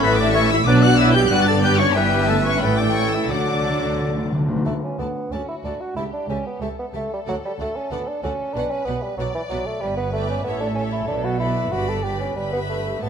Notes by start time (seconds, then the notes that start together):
0.00 A1 A2 E3 A3 E4 A4 B4 E5 B5
0.04 B3 B4
0.14 D6
0.19 D4 D5
0.31 A4 C#6
0.35 E3 C#4 C#5
0.48 E4 E5 E6
0.63 B1 B2 F#3 B3 D4 B4 D5 D6
0.68 D5
0.81 F#4 F#5 F#6
0.95 F#3 E4 E5 E6
1.00 B4 E5
1.12 G4 G5 G6
1.27 G1 G2 B3 D4 F#6
1.31 G3 F#4 B4 D5 F#5
1.44 A4 A5 A6
1.48 A5
1.61 G3 G4 B4 G5 G6
1.78 C#4 C#5 C#6
1.94 G1 G2 E3 G3 B3 E4 G4 B4 E5 G5
2.26 A3 A4 A5
2.44 C#4 C#5 C#6
2.59 A1 A2 E3 A3 B3 E4 A4 B4 G5 B5
2.76 D5 D6
2.80 D4 D5
2.92 C#4 C#6
2.97 C#5
3.10 E4 E5 E6
3.15 E5
3.26 D2 D3 F#3 A3 D4 F#4 A4 D5 D6
3.30 D5 F#5
3.38 D3
3.46 D3
3.53 D3
3.61 D3
3.70 D3
3.78 D3
3.86 D3
3.93 D3
4.01 D3
4.08 D3
4.17 D3
4.25 D3
4.33 D3
4.41 D3
4.48 D3
4.56 D3
4.65 D2 D3 A3 F#4 A4 D5 A5
4.84 C#4
4.99 D2 B3 F#4 A4 D5 A5
5.31 D2 C#4 F#4 A4 D5 A5
5.48 E4
5.63 D2 D4 F#4 A4 D5 A5
5.81 F#4
5.95 C#2 E4 G4 A4 E5 A5
6.13 D4
6.28 C#2 C#4 G4 A4 E5 A5
6.47 B3
6.61 C#2 A3 G4 A4 E5 A5
6.79 B3
6.94 C#2 A3 G4 A4 E5 A5
7.13 G3
7.26 D2 F#3 F#4 A4 D5 F#5
7.46 G3
7.59 D2 A3 F#4 A4 D5 F#5
7.76 C#4
7.91 D2 B3 F#4 A4 D5 F#5
8.08 D4
8.23 D2 C#4 F#4 A4 D5 F#5
8.54 B1 B2 D4 F#4 B4 D5 F#5
8.71 C#4
8.85 B1 B2 B3 F#4 B4 D5 F#5
9.03 G3
9.17 B1 B2 F#3 F#4 B4 D5 F#5
9.35 E3
9.49 B1 B2 F#3 F#4 B4 D5 F#5
9.66 A3
9.80 G1 G2 G3 B4
9.97 B3
10.12 A3 B4 D5 E5 G5
10.30 C#4
10.44 A1 A2 B3 A4 C#5 E5
10.61 D4
10.75 C#4 A4 C#5 E5
10.92 E4
11.08 B1 B2 D4
11.24 F#4
11.40 E4 F#4 B4 D5 B5
11.71 G1 G2 F#4 G4 B4 D5 B5
11.89 A4
12.03 G4 B4 D5 B5
12.20 C#4
12.35 G1 G2 G3 G4 B4 E5 B5
12.53 B3
12.70 A3
13.01 A1 A2 B3 A4 C#5 E5 A5